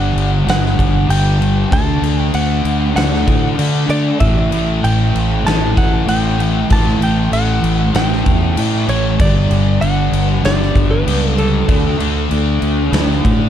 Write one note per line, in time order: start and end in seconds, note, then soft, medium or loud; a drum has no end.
0.00 0.13 G1 medium
0.00 0.45 D3 medium
0.00 0.46 G3 medium
0.00 0.49 F#5 loud
0.16 0.44 G1 medium
0.16 crash medium
0.45 0.75 G1 medium
0.45 1.06 G2 medium
0.45 1.08 D3 loud
0.45 1.09 G3 loud
0.45 crash medium
0.50 1.10 F#5 loud
0.50 snare loud
0.66 snare soft
0.79 1.07 G1 medium
0.79 kick medium
0.79 crash medium
1.08 1.65 G1 medium
1.08 1.69 G2 medium
1.08 1.41 D3 medium
1.08 1.37 G3 medium
1.08 1.73 G5 loud
1.08 crash medium
1.38 1.69 D3 medium
1.38 1.69 G3 medium
1.38 crash medium
1.70 2.00 D2 loud
1.70 2.34 D3 medium
1.70 2.03 A3 loud
1.70 2.00 D4 medium
1.70 2.22 A5 loud
1.70 kick loud
1.70 crash medium
2.01 2.30 D2 medium
2.01 2.96 A3 medium
2.01 2.97 D4 medium
2.01 crash medium
2.22 2.34 G5 loud
2.34 2.62 D2 medium
2.34 2.95 F#5 loud
2.34 crash medium
2.65 2.93 D2 medium
2.65 crash medium
2.95 3.24 D2 medium
2.95 3.55 D3 medium
2.95 3.58 A3 medium
2.95 3.58 D4 medium
2.95 3.55 F#5 medium
2.95 snare loud
2.95 crash medium
3.14 snare soft
3.27 3.55 A2 loud
3.27 kick medium
3.27 crash medium
3.57 4.18 D3 medium
3.57 3.87 D3 medium
3.57 3.91 A3 medium
3.57 3.87 D4 medium
3.57 crash loud
3.89 4.17 D3 medium
3.89 4.21 A3 medium
3.89 4.19 D4 medium
3.89 4.20 D5 loud
3.89 crash medium
4.20 4.49 A1 loud
4.20 5.45 A2 loud
4.20 4.53 E3 loud
4.20 4.50 A3 loud
4.20 4.85 E5 loud
4.20 kick loud
4.20 crash medium
4.51 4.80 A1 medium
4.51 5.45 E3 medium
4.51 5.47 A3 medium
4.51 crash medium
4.84 5.12 A1 loud
4.84 5.46 G5 loud
4.84 crash medium
5.15 5.43 A1 medium
5.15 crash medium
5.45 5.74 A1 medium
5.45 6.06 A2 medium
5.45 6.08 E3 loud
5.45 6.09 A3 loud
5.45 5.77 A5 loud
5.45 snare loud
5.45 crash medium
5.77 6.05 A1 medium
5.77 6.08 F#5 loud
5.77 kick medium
5.77 crash medium
6.07 6.63 A1 medium
6.07 6.69 A2 medium
6.07 6.40 E3 medium
6.07 6.37 A3 medium
6.07 6.72 G5 loud
6.07 crash medium
6.38 6.71 E3 medium
6.38 6.72 A3 medium
6.38 crash medium
6.70 6.98 A1 loud
6.70 7.33 A2 loud
6.70 7.02 E3 medium
6.70 6.99 A3 loud
6.70 7.03 A5 loud
6.70 kick loud
6.70 crash medium
6.99 7.28 A1 medium
6.99 7.95 A3 medium
6.99 crash medium
7.03 7.94 E3 medium
7.03 7.33 G5 medium
7.32 7.60 A1 medium
7.32 7.91 F#5 loud
7.32 crash medium
7.63 7.91 A1 medium
7.63 crash medium
7.93 8.22 A1 medium
7.93 8.54 A2 medium
7.93 8.56 E3 medium
7.93 8.57 A3 loud
7.93 8.89 G5 loud
7.93 snare loud
7.93 crash medium
8.12 snare soft
8.26 8.54 E2 medium
8.26 kick medium
8.26 crash medium
8.56 9.17 A2 medium
8.56 8.85 A2 medium
8.56 8.89 E3 medium
8.56 8.86 A3 medium
8.56 crash loud
8.87 9.16 A1 medium
8.87 9.19 E3 medium
8.87 9.17 A3 medium
8.87 9.21 C#5 loud
8.87 crash medium
9.19 9.47 G1 medium
9.19 9.82 G2 loud
9.19 9.52 D3 loud
9.19 9.49 G3 loud
9.19 9.81 D5 loud
9.19 kick loud
9.19 crash loud
9.50 9.78 G1 loud
9.50 10.42 D3 medium
9.50 10.44 G3 medium
9.50 crash medium
9.81 10.10 G1 loud
9.81 10.45 F#5 medium
9.81 crash medium
10.12 10.40 G1 loud
10.12 crash medium
10.42 10.72 G1 medium
10.42 11.02 G2 medium
10.42 11.04 D3 loud
10.42 11.05 G3 loud
10.42 10.93 D5 loud
10.42 snare loud
10.42 crash medium
10.62 snare soft
10.75 11.03 G1 loud
10.75 kick medium
10.75 crash medium
10.91 11.38 B4 medium
11.03 11.62 C#2 medium
11.03 11.65 G2 medium
11.03 11.37 D3 medium
11.03 11.34 G3 medium
11.08 crash loud
11.35 11.65 D3 medium
11.35 11.66 G3 medium
11.35 13.49 A4 medium
11.35 crash medium
11.66 11.96 D2 loud
11.66 12.30 D3 medium
11.66 12.00 A3 loud
11.66 11.97 D4 loud
11.66 kick loud
11.66 crash medium
11.98 12.27 D2 medium
11.98 12.92 A3 medium
11.98 12.93 D4 medium
11.98 crash medium
12.31 12.59 D2 medium
12.31 crash medium
12.62 12.89 D2 medium
12.62 crash medium
12.91 13.20 D2 medium
12.91 13.49 D3 medium
12.91 13.49 A3 medium
12.91 13.49 D4 medium
12.91 snare loud
12.91 crash medium
13.11 snare soft
13.25 13.49 A2 loud
13.25 kick medium
13.25 crash medium